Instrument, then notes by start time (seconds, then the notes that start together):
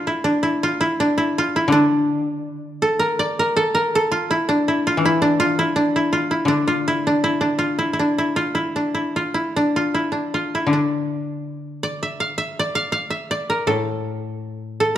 koto
Already playing: D4 F4 A4
0.07 E4
0.24 D4
0.43 E4
0.63 F4
0.81 E4
1.00 D4
1.18 E4
1.38 F4
1.56 E4
1.68 D3
1.72 D4
2.82 A4
2.99 A#4
3.19 D5
3.39 A#4
3.57 A4
3.75 A#4
3.95 A4
4.12 F4
4.31 E4
4.49 D4
4.68 E4
4.87 F4
4.97 E3
5.05 E4
5.22 D4
5.40 F4
5.59 E4
5.76 D4
5.96 E4
6.13 F4
6.31 E4
6.45 D3 D4
6.68 F4
6.88 E4
7.07 D4
7.24 E4
7.41 D4
7.59 F4
7.79 E4
7.93 E4
7.99 D4
8.18 E4
8.36 F4
8.55 E4
8.76 D4
8.95 E4
9.16 F4
9.34 E4
9.56 D4
9.76 F4
9.94 E4
10.12 D4
10.34 F4
10.55 E4
10.67 D3
10.73 D4
11.83 D5
12.03 E5
12.20 F5
12.38 E5
12.59 D5
12.75 F5
12.92 F5
13.10 E5
13.31 D5
13.50 A#4
13.67 A2 A4
14.80 A4